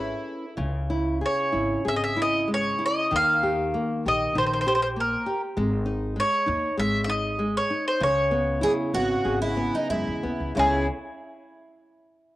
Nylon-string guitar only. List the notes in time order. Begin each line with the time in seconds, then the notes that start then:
Already playing: C#4 E4 B4
0.57 C#3
0.90 E4
1.21 G#4
1.52 E4
1.85 G#4
2.17 E4
2.48 G#3
2.79 E4
3.11 D#3
3.43 G4
3.74 A#3
4.06 G4
4.35 D#3
4.67 G4
4.96 A#3
5.26 G4
5.57 G#3
5.86 D#4
6.16 G#3
6.46 D#4
6.77 G#3
7.07 D#4
7.39 G#3
7.70 D#4
8.01 C#3
8.31 B3
8.61 E4
8.94 B3
9.25 G#4
9.57 B3
9.90 G#3
10.23 B3
10.55 C#3 G#3 C#4 E4